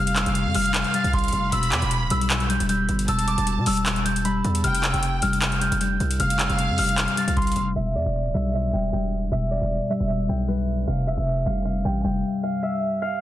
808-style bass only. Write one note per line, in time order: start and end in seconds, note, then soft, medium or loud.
0.00 0.25 F1 loud
0.26 0.47 F1 loud
0.46 0.54 F2 loud
0.55 0.84 F1 loud
1.04 1.32 C2 loud
1.33 1.52 F1 loud
1.52 1.73 E1 loud
1.72 1.82 E2 loud
1.82 2.03 E1 loud
2.02 2.10 D1 loud
2.11 2.58 B1 loud
2.60 2.88 E1 loud
2.89 3.07 G1 loud
3.08 3.37 E1 loud
3.38 3.59 E1 loud
3.57 3.66 B2 loud
3.67 4.41 E1 loud
4.45 4.63 E2 loud
4.64 4.85 F1 loud
4.83 4.93 E1 loud
4.94 5.21 F1 loud
5.22 5.70 F1 loud
5.72 5.99 F1 loud
6.00 6.19 C2 loud
6.20 6.48 F1 loud
6.50 6.71 F1 loud
6.69 6.78 F2 loud
6.78 7.07 F1 loud
7.28 7.55 C2 loud
7.56 7.75 F1 loud
7.76 7.97 E1 loud
7.95 8.05 E2 loud
8.05 8.26 E1 loud
8.25 8.34 D1 loud
8.34 8.72 B1 loud
8.73 8.92 E1 loud
8.93 9.30 E1 loud
9.32 9.60 E1 loud
9.61 9.80 E1 loud
10.00 10.28 E1 loud
10.29 10.85 B1 loud
10.87 11.08 F1 loud
11.07 11.17 E1 loud
11.17 11.45 F1 loud
11.46 11.83 F1 loud
11.85 12.04 A1 medium
12.04 12.23 F1 loud